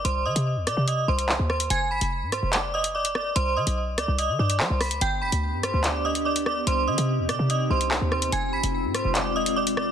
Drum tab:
HH |x--x--x-x--x---x|x--x--x-x--x-x--|x--x--x-x--x--ox|x--x--x-x--x-x--|
CP |------------x---|--------x-------|------------x---|--------x-------|
SD |------r-------r-|------r-------r-|------r-------r-|------r-------r-|

HH |x--x--x-x--x---x|x--x--x-x--x-x--|
CP |------------x---|--------x-------|
SD |------r-------r-|------r-------r-|